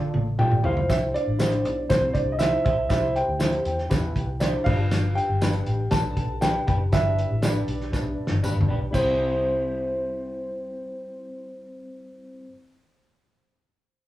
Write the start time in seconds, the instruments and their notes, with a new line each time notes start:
Already playing: tine electric piano F4 A4 D5
0.14 fingered electric bass A1, high tom
0.38 clean electric guitar D4 F4 A4, tine electric piano F4 A4 D5, vibraphone G4, grand piano G5, mid tom
0.52 mid tom
0.63 fingered electric bass C2, tine electric piano E4 G4 C5, clean electric guitar E4 G4 C5, vibraphone F4, grand piano F5, floor tom
0.77 floor tom
0.88 vibraphone E4, grand piano E5, kick, snare, closed hi-hat, tambourine
1.13 vibraphone D4, grand piano D5, closed hi-hat
1.27 fingered electric bass A1
1.39 tine electric piano E4 G4 C5, clean electric guitar E4 G4 C5, snare, closed hi-hat, tambourine
1.52 closed hi-hat
1.65 fingered electric bass B1, closed hi-hat
1.89 fingered electric bass C2, vibraphone C4, tine electric piano E4 G4 C5, grand piano C5, kick, snare, closed hi-hat, tambourine
2.13 fingered electric bass C2, vibraphone D4, grand piano D5, kick, closed hi-hat
2.32 vibraphone D#4, grand piano D#5
2.39 clean electric guitar E4 G4 C5, vibraphone E4, tine electric piano E4 G4 C5, grand piano E5, snare, closed hi-hat, tambourine
2.65 fingered electric bass B1, vibraphone E4, clean electric guitar E4 G4 C5, grand piano E5, kick, closed hi-hat
2.89 fingered electric bass C2, vibraphone E4, tine electric piano E4 G4 C5, grand piano E5, kick, snare, closed hi-hat, tambourine
3.15 vibraphone G4, grand piano G5, closed hi-hat
3.28 fingered electric bass D2
3.39 clean electric guitar E4 G4 C5, tine electric piano E4 G4 C5, snare, closed hi-hat, tambourine
3.53 closed hi-hat
3.65 fingered electric bass E2, closed hi-hat
3.78 snare
3.90 fingered electric bass E2, tine electric piano E4 G4 B4, kick, snare, closed hi-hat, tambourine
4.16 fingered electric bass C2, kick, closed hi-hat
4.40 vibraphone D4, tine electric piano E4 G4 C5, clean electric guitar E4 G4 C5, grand piano D5, snare, closed hi-hat, tambourine
4.64 fingered electric bass G1, tine electric piano D4 G4 B4, clean electric guitar D4 G4 B4, vibraphone F4, grand piano F5, kick, crash
4.91 snare, closed hi-hat, tambourine
5.15 vibraphone G4, grand piano G5, closed hi-hat
5.29 fingered electric bass G1
5.41 clean electric guitar D4 G4 B4, tine electric piano D4 G4 B4, snare, closed hi-hat, tambourine
5.53 closed hi-hat
5.66 fingered electric bass A1, closed hi-hat
5.90 fingered electric bass B1, tine electric piano D4 G4 B4, vibraphone A4, grand piano A5, kick, snare, closed hi-hat, tambourine
6.17 fingered electric bass B1, kick, closed hi-hat
6.41 clean electric guitar D4 G4 B4, tine electric piano D4 G4 B4, vibraphone G4, grand piano G5, snare, closed hi-hat, tambourine
6.66 fingered electric bass F#1, clean electric guitar D4 G4 B4, vibraphone G4, grand piano G5, kick, closed hi-hat
6.91 fingered electric bass G1, tine electric piano D4 G4 B4, vibraphone E4, grand piano E5, kick, snare, closed hi-hat, tambourine
7.19 closed hi-hat
7.30 fingered electric bass A1
7.42 tine electric piano D4 G4 A4, clean electric guitar D4 G4 B4, vibraphone D4, grand piano D5, snare, closed hi-hat, tambourine
7.49 tine electric piano B4
7.68 fingered electric bass B1, closed hi-hat
7.81 snare
7.92 fingered electric bass B1, tine electric piano D4 G4 B4, kick, snare, tambourine
8.18 muted fingered electric bass stroke
8.27 fingered electric bass G1, snare
8.43 tine electric piano D4 G4 B4, clean electric guitar D4 G4 B4, mid tom, tambourine
8.56 fingered electric bass G1
8.61 floor tom
8.68 fingered electric bass A#1, clean electric guitar D4 G4 B4
8.81 fingered electric bass B1
8.91 fingered electric bass C2, tine electric piano G3 C4, vibraphone C4, clean electric guitar E4, grand piano C5, kick, crash, tambourine
8.95 tine electric piano E4 C5, clean electric guitar G4 C5